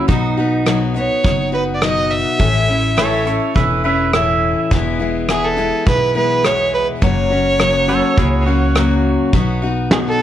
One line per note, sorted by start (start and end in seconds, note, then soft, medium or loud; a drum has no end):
0.08 1.06 B1 medium
0.08 0.37 B2 medium
0.08 0.38 F#3 medium
0.08 0.38 B3 medium
0.08 0.79 D#4 medium
0.08 0.37 D#4 medium
0.08 0.36 F#4 medium
0.08 kick loud
0.08 closed hi-hat medium
0.37 0.65 B3 soft
0.37 0.65 D#4 medium
0.37 0.66 F#4 medium
0.66 0.95 B2 medium
0.66 0.95 F#3 medium
0.66 0.95 B3 medium
0.66 0.94 D#4 medium
0.66 0.93 F#4 medium
0.66 cross-stick loud
0.66 closed hi-hat medium
0.94 1.23 B3 soft
0.94 1.24 D#4 soft
0.94 1.24 F#4 soft
0.94 1.50 C#5 medium
0.94 closed hi-hat medium
1.23 2.22 F#1 medium
1.23 1.53 F#3 medium
1.23 1.53 B3 medium
1.23 1.52 D#4 medium
1.23 1.51 F#4 medium
1.23 kick medium
1.23 closed hi-hat medium
1.52 1.82 B3 soft
1.52 1.82 D#4 soft
1.52 1.82 F#4 medium
1.52 1.63 B4 medium
1.75 1.84 D5 medium
1.82 2.39 B2 medium
1.82 2.39 F#3 medium
1.82 2.40 B3 medium
1.82 2.40 D#4 medium
1.82 2.41 F#4 medium
1.82 2.13 D#5 medium
1.82 cross-stick loud
1.82 closed hi-hat medium
2.11 3.27 E5 loud
2.39 3.37 A1 medium
2.39 2.68 A2 medium
2.39 2.69 E3 medium
2.39 2.69 A3 medium
2.39 2.68 C#4 medium
2.39 2.67 E4 medium
2.39 kick loud
2.39 closed hi-hat medium
2.68 2.97 A3 soft
2.68 2.97 C#4 soft
2.68 2.97 E4 medium
2.97 3.26 A2 medium
2.97 3.26 E3 medium
2.97 3.27 A3 medium
2.97 3.26 C#4 medium
2.97 3.24 E4 medium
2.97 3.26 A4 medium
2.97 3.26 C#5 medium
2.97 cross-stick loud
2.97 closed hi-hat medium
3.25 3.54 A3 soft
3.25 3.55 C#4 medium
3.25 3.55 E4 medium
3.25 3.53 A4 medium
3.25 3.55 C#5 medium
3.25 closed hi-hat medium
3.54 4.53 E1 medium
3.54 3.84 E3 medium
3.54 3.84 A3 medium
3.54 3.84 C#4 medium
3.54 3.83 E4 medium
3.54 3.82 B4 medium
3.54 3.84 E5 medium
3.54 kick medium
3.54 closed hi-hat medium
3.84 4.13 A3 soft
3.84 4.13 C#4 soft
3.84 4.13 E4 medium
3.84 4.12 B4 medium
3.84 4.13 E5 medium
4.13 4.71 A2 medium
4.13 4.70 E3 medium
4.13 4.71 A3 medium
4.13 4.72 C#4 medium
4.13 4.71 E4 medium
4.13 4.70 E5 medium
4.13 cross-stick loud
4.13 closed hi-hat medium
4.71 5.69 E1 medium
4.71 5.00 E2 medium
4.71 5.00 B2 medium
4.71 5.00 E3 medium
4.71 5.00 G#3 medium
4.71 4.99 B3 medium
4.71 4.98 E4 medium
4.71 kick medium
4.71 closed hi-hat medium
5.00 5.28 E3 soft
5.00 5.28 G#3 soft
5.00 5.29 B3 soft
5.00 5.28 E4 medium
5.28 5.57 E2 medium
5.28 5.58 B2 medium
5.28 5.58 E3 medium
5.28 5.57 G#3 medium
5.28 5.57 B3 medium
5.28 5.56 E4 medium
5.28 5.46 G#4 medium
5.28 cross-stick loud
5.28 closed hi-hat medium
5.45 5.87 A4 medium
5.57 5.84 E3 soft
5.57 5.86 G#3 soft
5.57 5.86 B3 soft
5.57 5.86 E4 medium
5.57 closed hi-hat medium
5.86 6.84 B1 medium
5.86 6.15 E3 medium
5.86 6.15 G#3 medium
5.86 6.15 B3 medium
5.86 6.14 E4 medium
5.86 6.14 B4 medium
5.86 kick loud
5.86 closed hi-hat medium
6.15 6.43 E3 soft
6.15 6.44 G#3 soft
6.15 6.44 B3 soft
6.15 6.44 E4 soft
6.15 6.46 B4 medium
6.44 7.01 E2 medium
6.44 7.02 B2 medium
6.44 7.02 E3 medium
6.44 7.02 G#3 medium
6.44 7.02 B3 medium
6.44 7.03 E4 medium
6.44 6.73 C#5 medium
6.44 cross-stick loud
6.44 closed hi-hat medium
6.74 6.87 B4 medium
7.02 7.99 F#1 medium
7.02 7.31 F#2 medium
7.02 7.31 C#3 medium
7.02 7.31 F#3 medium
7.02 7.31 A#3 medium
7.02 7.31 C#4 medium
7.02 7.29 F#4 medium
7.02 8.71 C#5 loud
7.02 kick loud
7.02 closed hi-hat medium
7.30 7.59 F#3 soft
7.30 7.59 A#3 soft
7.30 7.59 C#4 soft
7.30 7.59 F#4 medium
7.59 7.88 F#2 medium
7.59 7.88 C#3 medium
7.59 7.89 F#3 medium
7.59 7.89 A#3 medium
7.59 7.87 C#4 medium
7.59 7.87 F#4 medium
7.59 cross-stick loud
7.59 closed hi-hat medium
7.88 8.15 F#3 medium
7.88 8.16 A#3 medium
7.88 8.17 C#4 medium
7.88 8.17 F#4 medium
7.88 8.17 A4 medium
7.88 8.17 C#5 medium
7.88 closed hi-hat medium
8.16 9.15 C#2 medium
8.16 8.45 F#3 medium
8.16 8.46 A#3 medium
8.16 8.46 C#4 medium
8.16 8.44 E4 medium
8.16 8.45 F#4 medium
8.16 8.46 G#4 medium
8.16 kick medium
8.16 closed hi-hat medium
8.46 8.74 F#3 soft
8.46 8.75 A#3 medium
8.46 8.75 C#4 medium
8.46 8.75 F#4 medium
8.46 9.72 F#4 medium
8.75 9.33 F#2 medium
8.75 9.33 C#3 medium
8.75 9.32 F#3 medium
8.75 9.33 A#3 medium
8.75 9.33 C#4 medium
8.75 9.33 F#4 medium
8.75 cross-stick loud
8.75 closed hi-hat medium
9.33 10.22 B1 medium
9.33 9.62 B2 medium
9.33 9.62 F#3 medium
9.33 9.62 B3 medium
9.33 9.62 D#4 medium
9.33 9.61 F#4 medium
9.33 kick loud
9.33 closed hi-hat medium
9.62 9.91 B3 soft
9.62 9.91 D#4 medium
9.62 9.91 F#4 medium
9.91 10.20 B2 medium
9.91 10.20 F#3 medium
9.91 10.20 B3 medium
9.91 10.21 D#4 medium
9.91 10.19 F#4 medium
9.91 9.98 G#4 medium
9.91 snare loud
9.91 closed hi-hat medium
10.07 10.22 A4 medium